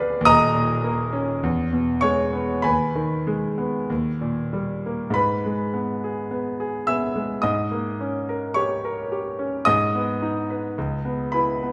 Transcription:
grand piano
Already playing: D2 D3 B3 D4 G#4 D5 F5 D6 F6
0.00 B4
0.21 D#2
0.25 D#1 D#5 A#5 D#6
0.54 A#2
0.84 A#3
1.13 C#4
1.43 E2
1.73 B2
2.01 G#3 C#5 C#6
2.33 B3
2.62 D#2 B4 G#5 B5
2.95 D#3
3.27 G#3
3.58 B3
3.90 D#2
4.21 A#2
4.53 G3
4.86 A#3
5.10 G#2 B5
5.15 B4
5.45 G#3
5.74 B3
6.04 G#4
6.31 B3
6.60 G#4
6.87 B3 E5 E6
7.16 G#3
7.42 G#2 D#5 D#6
7.72 A#3
8.01 C#4
8.29 A#4
8.54 G4 C#5 C#6
8.85 A#4
9.12 G4
9.39 C#4
9.65 G#2 D#5 D#6
9.95 B3
10.22 D#4
10.50 B4
10.78 C#2
11.05 B3
11.32 E4 B4 B5
11.63 B3

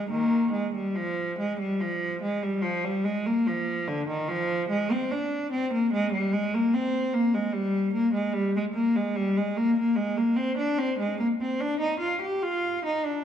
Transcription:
cello
0.09 D#3 A#3
0.52 G#3
0.74 G3
0.95 F3
1.39 G#3
1.60 G3
1.81 F3
2.22 G#3
2.42 G3
2.62 F3
2.84 G3
3.04 G#3
3.26 A#3
3.47 F3
3.88 D3
4.09 D#3
4.28 F3
4.69 G#3
4.92 C4
5.11 D4
5.52 C4
5.73 A#3
5.93 G#3
6.13 G3
6.33 G#3
6.54 A#3
6.74 C4
7.14 A#3
7.34 G#3
7.53 G3
7.93 A#3
8.14 G#3
8.33 G3
8.56 G#3
8.74 A#3
8.96 G#3
9.16 G3
9.37 G#3
9.57 A#3
9.79 A#3
9.96 G#3
10.17 A#3
10.36 C4
10.57 D4
10.78 C4
10.99 G#3
11.19 A#3
11.41 C4
11.60 D4
11.80 D#4
12.00 F4
12.21 G4
12.43 F4
12.85 D#4
13.05 D4

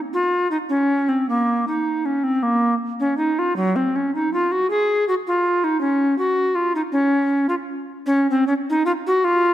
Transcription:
recorder
0.14 F4
0.51 D#4
0.69 C#4
1.09 C4
1.29 A#3
1.68 D#4
2.06 C#4
2.24 C4
2.43 A#3
3.00 C#4
3.17 D#4
3.39 F4
3.56 F#3
3.76 C4
3.96 C#4
4.15 D#4
4.34 F4
4.52 F#4
4.70 G#4
5.08 F#4
5.27 F4
5.64 D#4
5.81 C#4
6.18 F#4
6.55 F4
6.75 D#4
6.92 C#4
7.49 F4
8.06 C#4
8.30 C4
8.47 C#4
8.70 D#4
8.86 F4
9.07 F#4
9.24 F4

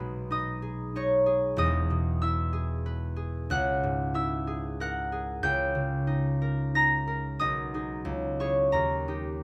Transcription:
harp
Already playing: B1 B2 D#4 B4 D#5 B5 D#6
0.00 G#3
0.31 D#4 D#5 D#6
0.62 G#4
0.96 D#4 C#5 C#6
1.26 G#4
1.57 E1 E2 D#5 D#6
1.90 B2
2.22 E4 E5 E6
2.53 G#4
2.86 B4
3.16 G#4
3.50 C#2 F#5 F#6
3.83 G#2
4.14 E4 E5 E6
4.47 G#4
4.80 A#4 F#5 F#6
5.12 G#4
5.43 C#2 G5 G6
5.75 C#3
6.07 D#4
6.42 A#4
6.75 D#4 A#5 A#6
7.07 A#4
7.39 B1 D#5 D#6
7.74 D#4 G#4
8.05 C#2
8.40 E4 G#4 C#5 C#6
8.72 D#2 A#4 A#5
9.08 D#4 G4

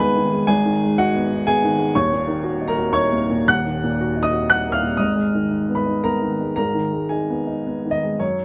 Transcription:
upright piano
Already playing: G#1 G#2 D#3 G#3 D#4 G#4 G#5
0.00 B3 B4 B5
0.16 D#3
0.33 G#3
0.47 G#1 G#2 G#4 G#5
0.65 D#3
0.84 G#3
0.98 D#4 F#4 F#5
1.15 B3
1.33 D#4
1.47 B3 G#4 G#5
1.64 D#3
1.79 G#3
1.95 D#1 D#2 C#5 C#6
2.13 A#2
2.28 D#3
2.44 F#4
2.61 D#4
2.68 A#4 A#5
2.77 F#4
2.93 D#4 C#5 C#6
3.12 A#3
3.30 A#2
3.48 D#1 D#2 F#5 F#6
3.66 D#3
3.84 A#2
4.01 F#4
4.17 D#4
4.23 D#5 D#6
4.33 F#4
4.50 D#4 F#5 F#6
4.69 A#3 F6
4.74 F5
4.83 A#2
4.97 G#1 G#2 D#5 D#6
5.15 G#3
5.35 D#3
5.51 D#4
5.69 B3
5.75 B4 B5
5.86 D#4
6.03 B3 A#4 A#5
6.22 D#3
6.41 G#3
6.56 G#1 G#2 A#4 A#5
6.75 D#3
6.93 G#3
7.09 D#4 G#4 G#5
7.30 B3
7.47 D#4
7.66 B3
7.85 D#3
7.91 D#5
8.03 G#3
8.19 F#2 C#5

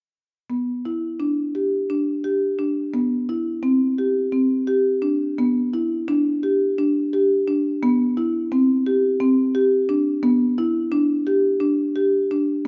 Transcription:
marimba
0.50 B3
0.85 E4
1.20 D4
1.55 G4
1.90 D4
2.24 G4
2.59 D4
2.94 B3
3.29 E4
3.63 C4
3.98 G4
4.32 C4
4.67 G4
5.02 D4
5.38 B3
5.73 E4
6.08 D4
6.43 G4
6.78 D4
7.13 G4
7.48 D4
7.83 B3
8.17 E4
8.52 C4
8.86 G4
9.20 C4
9.55 G4
9.89 D4
10.23 B3
10.58 E4
10.92 D4
11.27 G4
11.60 D4
11.96 G4
12.31 D4

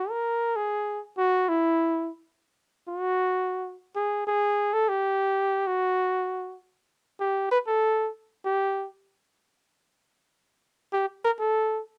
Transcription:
flugelhorn
Already playing: F#4
0.10 A#4
0.56 G#4
1.17 F#4
1.49 E4
2.88 F#4
3.96 G#4
4.27 G#4
4.73 A4
4.89 G4
5.67 F#4
7.20 G4
7.51 B4
7.67 A4
8.45 G4
10.93 G4
11.24 A#4
11.40 A4

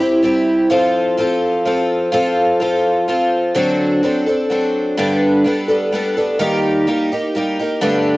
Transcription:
twelve-string acoustic guitar
0.00 C4 E4 G4
0.23 G3 C4 E4 G4
0.70 F3 C4 F4 A4
1.17 F3 C4 F4 A4
1.65 F3 C4 F4 A4
2.12 F3 C4 F4 A4
2.60 F3 C4 F4 A4
3.08 F3 C4 F4 A4
3.55 D3 F#3 C4 D4 A4
4.03 F#3 C4 D4 A4
4.27 C4 D4 A4
4.50 F#3 C4 D4 A4
4.97 G2 D3 G3 B3 D4 A4
5.44 G3 B3 D4 A4
5.68 G3 B3 D4 A4
5.92 G3 B3 D4 A4
6.16 G3 B3 D4 A4
6.39 D#3 G3 A#3 D#4 G4
6.87 G3 A#3 D#4 G4
7.12 A#3 D#4 G4
7.35 G3 A#3 D#4 G4
7.59 A#3 D#4 G4
7.81 G2 D3 A3 B3 D4 G4

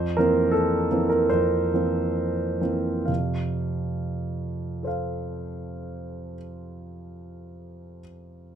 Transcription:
grand piano
Already playing: F2 C5
0.17 E3 A#3 C4 A#4
0.51 A4
0.91 E3 A#3 C4
1.09 A#4
1.29 F2 C5
1.74 E3 A#3 C4
2.61 E3 A#3 C4
3.05 F2 C3 F5
4.83 A4 C5
4.87 F5

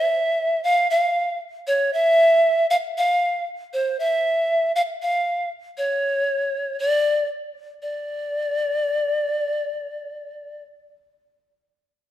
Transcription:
pan flute
Already playing: E5
0.64 F5
0.90 F5
1.67 C#5
1.93 E5
2.70 F5
2.98 F5
3.73 C5
4.00 E5
4.76 F5
5.02 F5
5.78 C#5
6.79 D5
7.82 D5

